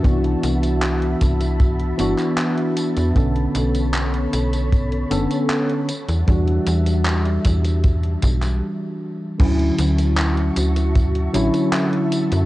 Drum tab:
CC |----------------|----------------|----------------|x---------------|
HH |xxxxxxxxxxxxxxxx|xxxxxxxxxxxxxxxx|xxxxxxxxxxxx----|xxxxxxxxxxxxxxxx|
TB |x-xxx-xxx-xxx-xx|x-xxx-xxx-xxx-xx|x-xxx-xxx-xx----|x-xxx-xxx-xxx-xx|
CP |----x------xx---|----x-------x---|----x------x----|----x-------x---|
BD |o-----o-o-------|o-------o-------|o-----o-o-o-----|o-------o-------|